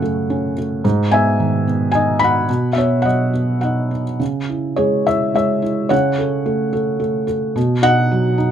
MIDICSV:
0, 0, Header, 1, 2, 480
1, 0, Start_track
1, 0, Tempo, 547945
1, 739, Time_signature, 3, 2, 24, 8
1, 2177, Tempo, 571973
1, 5057, Tempo, 547945
1, 7333, End_track
2, 0, Start_track
2, 0, Title_t, "Felt piano"
2, 0, Program_c, 0, 0
2, 0, Control_c, 0, 64, 127
2, 0, Note_on_c, 0, 42, 57
2, 0, Note_on_c, 0, 49, 47
2, 0, Note_on_c, 0, 57, 46
2, 0, Note_on_c, 0, 73, 54
2, 0, Note_on_c, 0, 78, 71
2, 19, Note_off_c, 0, 57, 0
2, 19, Note_on_c, 0, 57, 45
2, 262, Note_on_c, 0, 61, 49
2, 455, Note_off_c, 0, 78, 0
2, 465, Note_off_c, 0, 73, 0
2, 495, Note_off_c, 0, 57, 0
2, 509, Note_on_c, 0, 57, 41
2, 700, Note_off_c, 0, 42, 0
2, 715, Note_off_c, 0, 49, 0
2, 728, Note_off_c, 0, 61, 0
2, 738, Note_off_c, 0, 57, 0
2, 740, Note_on_c, 0, 44, 65
2, 751, Control_c, 0, 64, 0
2, 885, Control_c, 0, 64, 127
2, 976, Note_on_c, 0, 80, 83
2, 977, Note_on_c, 0, 59, 44
2, 994, Note_on_c, 0, 76, 67
2, 1224, Note_on_c, 0, 51, 48
2, 1454, Note_off_c, 0, 59, 0
2, 1467, Note_on_c, 0, 59, 48
2, 1665, Note_off_c, 0, 80, 0
2, 1667, Note_off_c, 0, 76, 0
2, 1678, Note_on_c, 0, 80, 71
2, 1709, Note_on_c, 0, 75, 66
2, 1710, Note_on_c, 0, 63, 44
2, 1922, Note_off_c, 0, 59, 0
2, 1922, Note_on_c, 0, 83, 84
2, 1925, Note_off_c, 0, 75, 0
2, 1934, Note_off_c, 0, 80, 0
2, 1936, Note_on_c, 0, 59, 42
2, 1964, Note_on_c, 0, 78, 68
2, 2142, Note_off_c, 0, 44, 0
2, 2151, Note_off_c, 0, 51, 0
2, 2170, Note_off_c, 0, 59, 0
2, 2170, Note_off_c, 0, 63, 0
2, 2178, Note_on_c, 0, 47, 57
2, 2188, Control_c, 0, 64, 0
2, 2356, Control_c, 0, 64, 127
2, 2384, Note_on_c, 0, 76, 64
2, 2394, Note_off_c, 0, 78, 0
2, 2408, Note_on_c, 0, 59, 41
2, 2420, Note_off_c, 0, 83, 0
2, 2425, Note_on_c, 0, 73, 54
2, 2626, Note_on_c, 0, 78, 72
2, 2642, Note_off_c, 0, 73, 0
2, 2646, Note_off_c, 0, 76, 0
2, 2651, Note_on_c, 0, 54, 39
2, 2654, Note_on_c, 0, 75, 55
2, 2877, Note_off_c, 0, 59, 0
2, 2890, Note_on_c, 0, 59, 41
2, 3092, Note_off_c, 0, 78, 0
2, 3106, Note_off_c, 0, 75, 0
2, 3121, Note_on_c, 0, 78, 56
2, 3136, Note_on_c, 0, 63, 39
2, 3149, Note_on_c, 0, 75, 39
2, 3360, Note_off_c, 0, 59, 0
2, 3372, Note_on_c, 0, 59, 35
2, 3468, Note_off_c, 0, 78, 0
2, 3483, Note_off_c, 0, 75, 0
2, 3590, Note_off_c, 0, 47, 0
2, 3593, Note_off_c, 0, 54, 0
2, 3607, Note_off_c, 0, 63, 0
2, 3611, Note_off_c, 0, 59, 0
2, 3613, Note_on_c, 0, 49, 52
2, 3635, Control_c, 0, 64, 0
2, 3772, Control_c, 0, 64, 127
2, 3862, Note_on_c, 0, 64, 39
2, 4090, Note_on_c, 0, 73, 69
2, 4096, Note_on_c, 0, 68, 54
2, 4107, Note_on_c, 0, 56, 42
2, 4326, Note_off_c, 0, 68, 0
2, 4328, Note_off_c, 0, 64, 0
2, 4340, Note_off_c, 0, 73, 0
2, 4341, Note_on_c, 0, 64, 43
2, 4343, Note_on_c, 0, 76, 71
2, 4353, Note_on_c, 0, 73, 56
2, 4565, Note_off_c, 0, 56, 0
2, 4571, Note_off_c, 0, 73, 0
2, 4573, Note_off_c, 0, 76, 0
2, 4578, Note_on_c, 0, 56, 45
2, 4586, Note_on_c, 0, 76, 71
2, 4590, Note_on_c, 0, 73, 56
2, 4797, Note_off_c, 0, 64, 0
2, 4810, Note_on_c, 0, 64, 39
2, 5018, Note_off_c, 0, 49, 0
2, 5023, Note_off_c, 0, 73, 0
2, 5036, Note_on_c, 0, 73, 67
2, 5039, Note_off_c, 0, 56, 0
2, 5044, Note_off_c, 0, 64, 0
2, 5045, Note_on_c, 0, 78, 76
2, 5047, Note_on_c, 0, 49, 63
2, 5068, Control_c, 0, 64, 0
2, 5072, Note_off_c, 0, 76, 0
2, 5217, Control_c, 0, 64, 127
2, 5290, Note_on_c, 0, 69, 43
2, 5530, Note_on_c, 0, 57, 47
2, 5754, Note_off_c, 0, 69, 0
2, 5767, Note_on_c, 0, 69, 51
2, 5990, Note_off_c, 0, 57, 0
2, 6003, Note_on_c, 0, 57, 44
2, 6215, Note_off_c, 0, 73, 0
2, 6220, Note_off_c, 0, 78, 0
2, 6230, Note_off_c, 0, 69, 0
2, 6243, Note_on_c, 0, 69, 41
2, 6461, Note_off_c, 0, 49, 0
2, 6479, Note_off_c, 0, 57, 0
2, 6485, Note_off_c, 0, 69, 0
2, 6493, Note_on_c, 0, 47, 68
2, 6511, Control_c, 0, 64, 0
2, 6651, Control_c, 0, 64, 127
2, 6725, Note_on_c, 0, 63, 44
2, 6729, Note_on_c, 0, 75, 62
2, 6732, Note_on_c, 0, 78, 101
2, 6983, Note_on_c, 0, 54, 50
2, 7200, Note_off_c, 0, 63, 0
2, 7214, Note_on_c, 0, 63, 50
2, 7333, Note_off_c, 0, 47, 0
2, 7333, Note_off_c, 0, 54, 0
2, 7333, Note_off_c, 0, 63, 0
2, 7333, Note_off_c, 0, 75, 0
2, 7333, Note_off_c, 0, 78, 0
2, 7333, End_track
0, 0, End_of_file